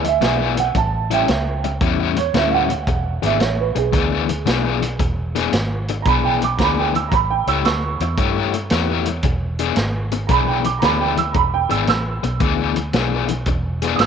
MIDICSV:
0, 0, Header, 1, 6, 480
1, 0, Start_track
1, 0, Tempo, 530035
1, 678, Time_signature, 4, 2, 24, 8
1, 12736, End_track
2, 0, Start_track
2, 0, Title_t, "Upright piano"
2, 0, Program_c, 0, 0
2, 24, Note_on_c, 0, 75, 61
2, 42, Note_off_c, 0, 75, 0
2, 69, Note_on_c, 0, 76, 90
2, 521, Note_off_c, 0, 76, 0
2, 541, Note_on_c, 0, 78, 75
2, 684, Note_off_c, 0, 78, 0
2, 700, Note_on_c, 0, 81, 77
2, 1003, Note_off_c, 0, 81, 0
2, 1023, Note_on_c, 0, 76, 75
2, 1029, Note_on_c, 0, 79, 82
2, 1460, Note_off_c, 0, 76, 0
2, 1482, Note_off_c, 0, 79, 0
2, 1975, Note_on_c, 0, 73, 95
2, 2124, Note_off_c, 0, 73, 0
2, 2147, Note_on_c, 0, 76, 81
2, 2266, Note_on_c, 0, 77, 66
2, 2290, Note_off_c, 0, 76, 0
2, 2304, Note_on_c, 0, 78, 89
2, 2322, Note_off_c, 0, 77, 0
2, 2915, Note_off_c, 0, 78, 0
2, 2949, Note_on_c, 0, 76, 80
2, 3092, Note_off_c, 0, 76, 0
2, 3113, Note_on_c, 0, 73, 73
2, 3254, Note_off_c, 0, 73, 0
2, 3266, Note_on_c, 0, 71, 68
2, 3411, Note_off_c, 0, 71, 0
2, 3424, Note_on_c, 0, 68, 86
2, 4821, Note_off_c, 0, 68, 0
2, 5454, Note_on_c, 0, 82, 70
2, 5492, Note_off_c, 0, 82, 0
2, 5497, Note_on_c, 0, 83, 97
2, 5648, Note_off_c, 0, 83, 0
2, 5657, Note_on_c, 0, 79, 84
2, 5808, Note_off_c, 0, 79, 0
2, 5833, Note_on_c, 0, 86, 81
2, 5953, Note_on_c, 0, 82, 63
2, 5976, Note_off_c, 0, 86, 0
2, 5987, Note_off_c, 0, 82, 0
2, 5995, Note_on_c, 0, 83, 85
2, 6137, Note_off_c, 0, 83, 0
2, 6151, Note_on_c, 0, 79, 78
2, 6295, Note_off_c, 0, 79, 0
2, 6302, Note_on_c, 0, 88, 76
2, 6417, Note_on_c, 0, 82, 65
2, 6450, Note_off_c, 0, 88, 0
2, 6454, Note_off_c, 0, 82, 0
2, 6464, Note_on_c, 0, 83, 92
2, 6612, Note_off_c, 0, 83, 0
2, 6614, Note_on_c, 0, 79, 92
2, 6767, Note_off_c, 0, 79, 0
2, 6778, Note_on_c, 0, 88, 84
2, 6918, Note_off_c, 0, 88, 0
2, 6927, Note_on_c, 0, 85, 71
2, 6932, Note_on_c, 0, 88, 86
2, 8331, Note_off_c, 0, 85, 0
2, 8333, Note_off_c, 0, 88, 0
2, 9300, Note_on_c, 0, 82, 64
2, 9337, Note_off_c, 0, 82, 0
2, 9340, Note_on_c, 0, 83, 100
2, 9489, Note_off_c, 0, 83, 0
2, 9491, Note_on_c, 0, 79, 82
2, 9644, Note_off_c, 0, 79, 0
2, 9649, Note_on_c, 0, 86, 85
2, 9771, Note_on_c, 0, 82, 71
2, 9803, Note_off_c, 0, 86, 0
2, 9807, Note_on_c, 0, 83, 106
2, 9809, Note_off_c, 0, 82, 0
2, 9962, Note_off_c, 0, 83, 0
2, 9968, Note_on_c, 0, 79, 88
2, 10122, Note_off_c, 0, 79, 0
2, 10128, Note_on_c, 0, 88, 86
2, 10252, Note_on_c, 0, 82, 63
2, 10282, Note_off_c, 0, 88, 0
2, 10289, Note_off_c, 0, 82, 0
2, 10295, Note_on_c, 0, 83, 91
2, 10445, Note_off_c, 0, 83, 0
2, 10449, Note_on_c, 0, 79, 93
2, 10602, Note_off_c, 0, 79, 0
2, 10605, Note_on_c, 0, 88, 77
2, 10758, Note_off_c, 0, 88, 0
2, 10771, Note_on_c, 0, 88, 97
2, 12168, Note_off_c, 0, 88, 0
2, 12643, Note_on_c, 0, 87, 68
2, 12681, Note_off_c, 0, 87, 0
2, 12683, Note_on_c, 0, 88, 96
2, 12736, Note_off_c, 0, 88, 0
2, 12736, End_track
3, 0, Start_track
3, 0, Title_t, "Overdriven electric guitar"
3, 0, Program_c, 1, 29
3, 192, Note_on_c, 1, 52, 79
3, 198, Note_on_c, 1, 59, 85
3, 198, Note_on_c, 1, 62, 86
3, 202, Note_on_c, 1, 68, 88
3, 509, Note_off_c, 1, 68, 0
3, 514, Note_off_c, 1, 62, 0
3, 517, Note_off_c, 1, 52, 0
3, 517, Note_off_c, 1, 59, 0
3, 1003, Note_on_c, 1, 64, 88
3, 1011, Note_on_c, 1, 61, 88
3, 1017, Note_on_c, 1, 45, 71
3, 1017, Note_on_c, 1, 55, 73
3, 1153, Note_off_c, 1, 45, 0
3, 1155, Note_off_c, 1, 55, 0
3, 1160, Note_off_c, 1, 61, 0
3, 1160, Note_off_c, 1, 64, 0
3, 1642, Note_on_c, 1, 45, 78
3, 1648, Note_on_c, 1, 55, 84
3, 1651, Note_on_c, 1, 61, 83
3, 1653, Note_on_c, 1, 64, 85
3, 1958, Note_off_c, 1, 64, 0
3, 1959, Note_off_c, 1, 61, 0
3, 1964, Note_off_c, 1, 45, 0
3, 1964, Note_off_c, 1, 55, 0
3, 2121, Note_on_c, 1, 45, 80
3, 2125, Note_on_c, 1, 55, 85
3, 2133, Note_on_c, 1, 61, 85
3, 2135, Note_on_c, 1, 64, 99
3, 2435, Note_off_c, 1, 64, 0
3, 2443, Note_off_c, 1, 55, 0
3, 2444, Note_off_c, 1, 45, 0
3, 2446, Note_off_c, 1, 61, 0
3, 2922, Note_on_c, 1, 68, 87
3, 2925, Note_on_c, 1, 62, 84
3, 2931, Note_on_c, 1, 52, 70
3, 2932, Note_on_c, 1, 59, 83
3, 3069, Note_off_c, 1, 52, 0
3, 3070, Note_off_c, 1, 59, 0
3, 3073, Note_off_c, 1, 62, 0
3, 3077, Note_off_c, 1, 68, 0
3, 3554, Note_on_c, 1, 52, 82
3, 3561, Note_on_c, 1, 59, 86
3, 3564, Note_on_c, 1, 62, 84
3, 3567, Note_on_c, 1, 68, 86
3, 3874, Note_off_c, 1, 68, 0
3, 3876, Note_off_c, 1, 62, 0
3, 3881, Note_off_c, 1, 59, 0
3, 3882, Note_off_c, 1, 52, 0
3, 4038, Note_on_c, 1, 52, 73
3, 4044, Note_on_c, 1, 59, 82
3, 4047, Note_on_c, 1, 62, 91
3, 4049, Note_on_c, 1, 68, 87
3, 4357, Note_off_c, 1, 68, 0
3, 4364, Note_off_c, 1, 52, 0
3, 4364, Note_off_c, 1, 59, 0
3, 4365, Note_off_c, 1, 62, 0
3, 4849, Note_on_c, 1, 68, 85
3, 4851, Note_on_c, 1, 62, 82
3, 4853, Note_on_c, 1, 59, 69
3, 4859, Note_on_c, 1, 52, 75
3, 4998, Note_off_c, 1, 52, 0
3, 5000, Note_off_c, 1, 59, 0
3, 5002, Note_off_c, 1, 68, 0
3, 5003, Note_off_c, 1, 62, 0
3, 5499, Note_on_c, 1, 52, 70
3, 5502, Note_on_c, 1, 59, 75
3, 5505, Note_on_c, 1, 62, 80
3, 5511, Note_on_c, 1, 68, 88
3, 5810, Note_off_c, 1, 68, 0
3, 5815, Note_off_c, 1, 52, 0
3, 5817, Note_off_c, 1, 59, 0
3, 5818, Note_off_c, 1, 62, 0
3, 5974, Note_on_c, 1, 52, 74
3, 5983, Note_on_c, 1, 59, 84
3, 5984, Note_on_c, 1, 62, 90
3, 5986, Note_on_c, 1, 68, 95
3, 6281, Note_off_c, 1, 68, 0
3, 6287, Note_off_c, 1, 62, 0
3, 6289, Note_off_c, 1, 59, 0
3, 6293, Note_off_c, 1, 52, 0
3, 6775, Note_on_c, 1, 73, 86
3, 6779, Note_on_c, 1, 64, 71
3, 6779, Note_on_c, 1, 67, 79
3, 6786, Note_on_c, 1, 57, 72
3, 6929, Note_off_c, 1, 57, 0
3, 6931, Note_off_c, 1, 73, 0
3, 6933, Note_off_c, 1, 64, 0
3, 6933, Note_off_c, 1, 67, 0
3, 7409, Note_on_c, 1, 57, 82
3, 7411, Note_on_c, 1, 64, 77
3, 7416, Note_on_c, 1, 67, 82
3, 7419, Note_on_c, 1, 73, 81
3, 7725, Note_off_c, 1, 73, 0
3, 7730, Note_off_c, 1, 67, 0
3, 7731, Note_off_c, 1, 57, 0
3, 7732, Note_off_c, 1, 64, 0
3, 7896, Note_on_c, 1, 57, 76
3, 7899, Note_on_c, 1, 64, 83
3, 7901, Note_on_c, 1, 67, 86
3, 7905, Note_on_c, 1, 73, 93
3, 8207, Note_off_c, 1, 73, 0
3, 8211, Note_off_c, 1, 67, 0
3, 8214, Note_off_c, 1, 57, 0
3, 8215, Note_off_c, 1, 64, 0
3, 8692, Note_on_c, 1, 68, 97
3, 8694, Note_on_c, 1, 62, 88
3, 8696, Note_on_c, 1, 59, 80
3, 8701, Note_on_c, 1, 52, 73
3, 8830, Note_off_c, 1, 52, 0
3, 8835, Note_off_c, 1, 59, 0
3, 8837, Note_off_c, 1, 62, 0
3, 8842, Note_off_c, 1, 68, 0
3, 9319, Note_on_c, 1, 52, 82
3, 9322, Note_on_c, 1, 59, 72
3, 9327, Note_on_c, 1, 62, 89
3, 9329, Note_on_c, 1, 68, 90
3, 9633, Note_off_c, 1, 68, 0
3, 9637, Note_off_c, 1, 62, 0
3, 9643, Note_off_c, 1, 59, 0
3, 9644, Note_off_c, 1, 52, 0
3, 9802, Note_on_c, 1, 59, 78
3, 9803, Note_on_c, 1, 52, 82
3, 9809, Note_on_c, 1, 62, 89
3, 9813, Note_on_c, 1, 68, 87
3, 10110, Note_off_c, 1, 68, 0
3, 10114, Note_off_c, 1, 59, 0
3, 10114, Note_off_c, 1, 62, 0
3, 10126, Note_off_c, 1, 52, 0
3, 10594, Note_on_c, 1, 68, 98
3, 10598, Note_on_c, 1, 62, 94
3, 10602, Note_on_c, 1, 59, 78
3, 10608, Note_on_c, 1, 52, 78
3, 10746, Note_off_c, 1, 52, 0
3, 10752, Note_off_c, 1, 59, 0
3, 10755, Note_off_c, 1, 62, 0
3, 10758, Note_off_c, 1, 68, 0
3, 11231, Note_on_c, 1, 52, 81
3, 11237, Note_on_c, 1, 59, 87
3, 11240, Note_on_c, 1, 62, 90
3, 11246, Note_on_c, 1, 68, 92
3, 11548, Note_off_c, 1, 68, 0
3, 11549, Note_off_c, 1, 62, 0
3, 11554, Note_off_c, 1, 59, 0
3, 11558, Note_off_c, 1, 52, 0
3, 11717, Note_on_c, 1, 52, 84
3, 11723, Note_on_c, 1, 59, 82
3, 11723, Note_on_c, 1, 62, 92
3, 11726, Note_on_c, 1, 68, 99
3, 12028, Note_off_c, 1, 68, 0
3, 12031, Note_off_c, 1, 62, 0
3, 12037, Note_off_c, 1, 59, 0
3, 12041, Note_off_c, 1, 52, 0
3, 12519, Note_on_c, 1, 68, 94
3, 12529, Note_on_c, 1, 62, 91
3, 12532, Note_on_c, 1, 59, 79
3, 12535, Note_on_c, 1, 52, 71
3, 12676, Note_off_c, 1, 52, 0
3, 12678, Note_off_c, 1, 59, 0
3, 12678, Note_off_c, 1, 62, 0
3, 12678, Note_off_c, 1, 68, 0
3, 12736, End_track
4, 0, Start_track
4, 0, Title_t, "Fingered electric bass"
4, 0, Program_c, 2, 33
4, 0, Note_on_c, 2, 38, 91
4, 178, Note_off_c, 2, 38, 0
4, 190, Note_on_c, 2, 35, 89
4, 655, Note_off_c, 2, 35, 0
4, 677, Note_on_c, 2, 33, 94
4, 1139, Note_off_c, 2, 33, 0
4, 1166, Note_on_c, 2, 37, 96
4, 1624, Note_off_c, 2, 37, 0
4, 1640, Note_on_c, 2, 40, 84
4, 2101, Note_off_c, 2, 40, 0
4, 2119, Note_on_c, 2, 38, 82
4, 2581, Note_off_c, 2, 38, 0
4, 2599, Note_on_c, 2, 28, 92
4, 2910, Note_off_c, 2, 28, 0
4, 2927, Note_on_c, 2, 32, 90
4, 3078, Note_off_c, 2, 32, 0
4, 3083, Note_on_c, 2, 33, 97
4, 3392, Note_off_c, 2, 33, 0
4, 3401, Note_on_c, 2, 35, 89
4, 3556, Note_off_c, 2, 35, 0
4, 3564, Note_on_c, 2, 38, 90
4, 4025, Note_off_c, 2, 38, 0
4, 4042, Note_on_c, 2, 35, 83
4, 4505, Note_off_c, 2, 35, 0
4, 4524, Note_on_c, 2, 28, 84
4, 4986, Note_off_c, 2, 28, 0
4, 5009, Note_on_c, 2, 32, 93
4, 5469, Note_off_c, 2, 32, 0
4, 5485, Note_on_c, 2, 35, 87
4, 5947, Note_off_c, 2, 35, 0
4, 5967, Note_on_c, 2, 38, 80
4, 6428, Note_off_c, 2, 38, 0
4, 6444, Note_on_c, 2, 33, 82
4, 6755, Note_off_c, 2, 33, 0
4, 6765, Note_on_c, 2, 37, 88
4, 6919, Note_off_c, 2, 37, 0
4, 6927, Note_on_c, 2, 38, 89
4, 7237, Note_off_c, 2, 38, 0
4, 7243, Note_on_c, 2, 40, 82
4, 7398, Note_off_c, 2, 40, 0
4, 7408, Note_on_c, 2, 43, 92
4, 7868, Note_off_c, 2, 43, 0
4, 7886, Note_on_c, 2, 40, 92
4, 8347, Note_off_c, 2, 40, 0
4, 8363, Note_on_c, 2, 28, 92
4, 8825, Note_off_c, 2, 28, 0
4, 8845, Note_on_c, 2, 32, 98
4, 9306, Note_off_c, 2, 32, 0
4, 9319, Note_on_c, 2, 35, 92
4, 9782, Note_off_c, 2, 35, 0
4, 9804, Note_on_c, 2, 38, 82
4, 10265, Note_off_c, 2, 38, 0
4, 10275, Note_on_c, 2, 28, 92
4, 10588, Note_off_c, 2, 28, 0
4, 10600, Note_on_c, 2, 32, 88
4, 10751, Note_off_c, 2, 32, 0
4, 10757, Note_on_c, 2, 33, 88
4, 11068, Note_off_c, 2, 33, 0
4, 11079, Note_on_c, 2, 35, 93
4, 11231, Note_off_c, 2, 35, 0
4, 11237, Note_on_c, 2, 38, 95
4, 11699, Note_off_c, 2, 38, 0
4, 11720, Note_on_c, 2, 35, 91
4, 12180, Note_off_c, 2, 35, 0
4, 12190, Note_on_c, 2, 28, 96
4, 12654, Note_off_c, 2, 28, 0
4, 12669, Note_on_c, 2, 32, 90
4, 12736, Note_off_c, 2, 32, 0
4, 12736, End_track
5, 0, Start_track
5, 0, Title_t, "Muted overdriven electric guitar strokes"
5, 41, Note_on_c, 9, 29, 47
5, 132, Note_off_c, 9, 29, 0
5, 520, Note_on_c, 9, 29, 52
5, 610, Note_off_c, 9, 29, 0
5, 678, Note_on_c, 9, 29, 46
5, 769, Note_off_c, 9, 29, 0
5, 1164, Note_on_c, 9, 29, 42
5, 1254, Note_off_c, 9, 29, 0
5, 1488, Note_on_c, 9, 29, 53
5, 1579, Note_off_c, 9, 29, 0
5, 1969, Note_on_c, 9, 29, 52
5, 2059, Note_off_c, 9, 29, 0
5, 2446, Note_on_c, 9, 29, 51
5, 2536, Note_off_c, 9, 29, 0
5, 2611, Note_on_c, 9, 29, 42
5, 2702, Note_off_c, 9, 29, 0
5, 3080, Note_on_c, 9, 29, 43
5, 3171, Note_off_c, 9, 29, 0
5, 3401, Note_on_c, 9, 29, 54
5, 3491, Note_off_c, 9, 29, 0
5, 3885, Note_on_c, 9, 29, 49
5, 3975, Note_off_c, 9, 29, 0
5, 4368, Note_on_c, 9, 29, 53
5, 4458, Note_off_c, 9, 29, 0
5, 4524, Note_on_c, 9, 29, 45
5, 4615, Note_off_c, 9, 29, 0
5, 5008, Note_on_c, 9, 29, 45
5, 5099, Note_off_c, 9, 29, 0
5, 5340, Note_on_c, 9, 29, 56
5, 5430, Note_off_c, 9, 29, 0
5, 5821, Note_on_c, 9, 29, 53
5, 5912, Note_off_c, 9, 29, 0
5, 6292, Note_on_c, 9, 29, 48
5, 6383, Note_off_c, 9, 29, 0
5, 6454, Note_on_c, 9, 29, 44
5, 6545, Note_off_c, 9, 29, 0
5, 6940, Note_on_c, 9, 29, 46
5, 7031, Note_off_c, 9, 29, 0
5, 7259, Note_on_c, 9, 29, 48
5, 7349, Note_off_c, 9, 29, 0
5, 7736, Note_on_c, 9, 29, 48
5, 7827, Note_off_c, 9, 29, 0
5, 8218, Note_on_c, 9, 29, 51
5, 8308, Note_off_c, 9, 29, 0
5, 8369, Note_on_c, 9, 29, 46
5, 8460, Note_off_c, 9, 29, 0
5, 8841, Note_on_c, 9, 29, 47
5, 8931, Note_off_c, 9, 29, 0
5, 9166, Note_on_c, 9, 29, 48
5, 9256, Note_off_c, 9, 29, 0
5, 9644, Note_on_c, 9, 29, 49
5, 9735, Note_off_c, 9, 29, 0
5, 10121, Note_on_c, 9, 29, 55
5, 10211, Note_off_c, 9, 29, 0
5, 10277, Note_on_c, 9, 29, 46
5, 10367, Note_off_c, 9, 29, 0
5, 10757, Note_on_c, 9, 29, 48
5, 10847, Note_off_c, 9, 29, 0
5, 11078, Note_on_c, 9, 29, 55
5, 11169, Note_off_c, 9, 29, 0
5, 11559, Note_on_c, 9, 29, 57
5, 11649, Note_off_c, 9, 29, 0
5, 12039, Note_on_c, 9, 29, 48
5, 12130, Note_off_c, 9, 29, 0
5, 12203, Note_on_c, 9, 29, 46
5, 12294, Note_off_c, 9, 29, 0
5, 12686, Note_on_c, 9, 29, 50
5, 12736, Note_off_c, 9, 29, 0
5, 12736, End_track
6, 0, Start_track
6, 0, Title_t, "Drums"
6, 40, Note_on_c, 9, 42, 62
6, 131, Note_off_c, 9, 42, 0
6, 195, Note_on_c, 9, 42, 82
6, 204, Note_on_c, 9, 38, 113
6, 286, Note_off_c, 9, 42, 0
6, 295, Note_off_c, 9, 38, 0
6, 517, Note_on_c, 9, 42, 65
6, 608, Note_off_c, 9, 42, 0
6, 677, Note_on_c, 9, 42, 78
6, 678, Note_on_c, 9, 36, 99
6, 768, Note_off_c, 9, 36, 0
6, 768, Note_off_c, 9, 42, 0
6, 1003, Note_on_c, 9, 42, 58
6, 1094, Note_off_c, 9, 42, 0
6, 1160, Note_on_c, 9, 42, 79
6, 1169, Note_on_c, 9, 38, 114
6, 1250, Note_off_c, 9, 42, 0
6, 1259, Note_off_c, 9, 38, 0
6, 1484, Note_on_c, 9, 42, 53
6, 1575, Note_off_c, 9, 42, 0
6, 1636, Note_on_c, 9, 42, 77
6, 1639, Note_on_c, 9, 36, 112
6, 1726, Note_off_c, 9, 42, 0
6, 1730, Note_off_c, 9, 36, 0
6, 1960, Note_on_c, 9, 42, 60
6, 2051, Note_off_c, 9, 42, 0
6, 2120, Note_on_c, 9, 42, 78
6, 2129, Note_on_c, 9, 38, 108
6, 2210, Note_off_c, 9, 42, 0
6, 2219, Note_off_c, 9, 38, 0
6, 2444, Note_on_c, 9, 42, 59
6, 2534, Note_off_c, 9, 42, 0
6, 2600, Note_on_c, 9, 42, 71
6, 2601, Note_on_c, 9, 36, 100
6, 2691, Note_off_c, 9, 36, 0
6, 2691, Note_off_c, 9, 42, 0
6, 2924, Note_on_c, 9, 42, 56
6, 2933, Note_on_c, 9, 38, 31
6, 3014, Note_off_c, 9, 42, 0
6, 3023, Note_off_c, 9, 38, 0
6, 3080, Note_on_c, 9, 42, 85
6, 3089, Note_on_c, 9, 38, 119
6, 3170, Note_off_c, 9, 42, 0
6, 3179, Note_off_c, 9, 38, 0
6, 3401, Note_on_c, 9, 42, 55
6, 3491, Note_off_c, 9, 42, 0
6, 3561, Note_on_c, 9, 36, 107
6, 3562, Note_on_c, 9, 42, 92
6, 3652, Note_off_c, 9, 36, 0
6, 3652, Note_off_c, 9, 42, 0
6, 3884, Note_on_c, 9, 42, 58
6, 3975, Note_off_c, 9, 42, 0
6, 4044, Note_on_c, 9, 42, 86
6, 4053, Note_on_c, 9, 38, 117
6, 4135, Note_off_c, 9, 42, 0
6, 4144, Note_off_c, 9, 38, 0
6, 4368, Note_on_c, 9, 42, 70
6, 4458, Note_off_c, 9, 42, 0
6, 4522, Note_on_c, 9, 42, 72
6, 4523, Note_on_c, 9, 36, 100
6, 4613, Note_off_c, 9, 36, 0
6, 4613, Note_off_c, 9, 42, 0
6, 4850, Note_on_c, 9, 42, 59
6, 4860, Note_on_c, 9, 38, 30
6, 4941, Note_off_c, 9, 42, 0
6, 4950, Note_off_c, 9, 38, 0
6, 5005, Note_on_c, 9, 42, 91
6, 5014, Note_on_c, 9, 38, 116
6, 5095, Note_off_c, 9, 42, 0
6, 5105, Note_off_c, 9, 38, 0
6, 5327, Note_on_c, 9, 42, 57
6, 5418, Note_off_c, 9, 42, 0
6, 5484, Note_on_c, 9, 36, 115
6, 5485, Note_on_c, 9, 42, 80
6, 5575, Note_off_c, 9, 36, 0
6, 5576, Note_off_c, 9, 42, 0
6, 5810, Note_on_c, 9, 42, 58
6, 5901, Note_off_c, 9, 42, 0
6, 5965, Note_on_c, 9, 36, 76
6, 5965, Note_on_c, 9, 42, 75
6, 5974, Note_on_c, 9, 38, 99
6, 6055, Note_off_c, 9, 36, 0
6, 6056, Note_off_c, 9, 42, 0
6, 6065, Note_off_c, 9, 38, 0
6, 6293, Note_on_c, 9, 42, 56
6, 6384, Note_off_c, 9, 42, 0
6, 6445, Note_on_c, 9, 36, 102
6, 6446, Note_on_c, 9, 42, 75
6, 6536, Note_off_c, 9, 36, 0
6, 6537, Note_off_c, 9, 42, 0
6, 6768, Note_on_c, 9, 42, 55
6, 6859, Note_off_c, 9, 42, 0
6, 6928, Note_on_c, 9, 42, 81
6, 6937, Note_on_c, 9, 38, 114
6, 7018, Note_off_c, 9, 42, 0
6, 7028, Note_off_c, 9, 38, 0
6, 7247, Note_on_c, 9, 42, 56
6, 7338, Note_off_c, 9, 42, 0
6, 7404, Note_on_c, 9, 36, 110
6, 7406, Note_on_c, 9, 42, 83
6, 7494, Note_off_c, 9, 36, 0
6, 7497, Note_off_c, 9, 42, 0
6, 7729, Note_on_c, 9, 42, 60
6, 7819, Note_off_c, 9, 42, 0
6, 7877, Note_on_c, 9, 42, 86
6, 7886, Note_on_c, 9, 38, 117
6, 7968, Note_off_c, 9, 42, 0
6, 7977, Note_off_c, 9, 38, 0
6, 8200, Note_on_c, 9, 42, 66
6, 8291, Note_off_c, 9, 42, 0
6, 8355, Note_on_c, 9, 42, 85
6, 8361, Note_on_c, 9, 36, 103
6, 8446, Note_off_c, 9, 42, 0
6, 8451, Note_off_c, 9, 36, 0
6, 8682, Note_on_c, 9, 42, 62
6, 8772, Note_off_c, 9, 42, 0
6, 8836, Note_on_c, 9, 42, 90
6, 8845, Note_on_c, 9, 38, 110
6, 8927, Note_off_c, 9, 42, 0
6, 8936, Note_off_c, 9, 38, 0
6, 9160, Note_on_c, 9, 42, 58
6, 9251, Note_off_c, 9, 42, 0
6, 9316, Note_on_c, 9, 42, 85
6, 9318, Note_on_c, 9, 36, 110
6, 9406, Note_off_c, 9, 42, 0
6, 9409, Note_off_c, 9, 36, 0
6, 9639, Note_on_c, 9, 42, 58
6, 9729, Note_off_c, 9, 42, 0
6, 9796, Note_on_c, 9, 42, 84
6, 9805, Note_on_c, 9, 38, 118
6, 9887, Note_off_c, 9, 42, 0
6, 9896, Note_off_c, 9, 38, 0
6, 10118, Note_on_c, 9, 42, 67
6, 10209, Note_off_c, 9, 42, 0
6, 10271, Note_on_c, 9, 42, 75
6, 10276, Note_on_c, 9, 36, 107
6, 10362, Note_off_c, 9, 42, 0
6, 10366, Note_off_c, 9, 36, 0
6, 10599, Note_on_c, 9, 42, 53
6, 10689, Note_off_c, 9, 42, 0
6, 10752, Note_on_c, 9, 42, 82
6, 10761, Note_on_c, 9, 38, 108
6, 10842, Note_off_c, 9, 42, 0
6, 10851, Note_off_c, 9, 38, 0
6, 11080, Note_on_c, 9, 42, 55
6, 11171, Note_off_c, 9, 42, 0
6, 11230, Note_on_c, 9, 42, 89
6, 11234, Note_on_c, 9, 36, 114
6, 11321, Note_off_c, 9, 42, 0
6, 11324, Note_off_c, 9, 36, 0
6, 11553, Note_on_c, 9, 42, 62
6, 11644, Note_off_c, 9, 42, 0
6, 11710, Note_on_c, 9, 42, 85
6, 11719, Note_on_c, 9, 38, 114
6, 11801, Note_off_c, 9, 42, 0
6, 11810, Note_off_c, 9, 38, 0
6, 12030, Note_on_c, 9, 42, 64
6, 12121, Note_off_c, 9, 42, 0
6, 12186, Note_on_c, 9, 42, 84
6, 12192, Note_on_c, 9, 36, 99
6, 12277, Note_off_c, 9, 42, 0
6, 12283, Note_off_c, 9, 36, 0
6, 12513, Note_on_c, 9, 42, 57
6, 12522, Note_on_c, 9, 38, 30
6, 12604, Note_off_c, 9, 42, 0
6, 12613, Note_off_c, 9, 38, 0
6, 12667, Note_on_c, 9, 42, 86
6, 12676, Note_on_c, 9, 38, 112
6, 12736, Note_off_c, 9, 38, 0
6, 12736, Note_off_c, 9, 42, 0
6, 12736, End_track
0, 0, End_of_file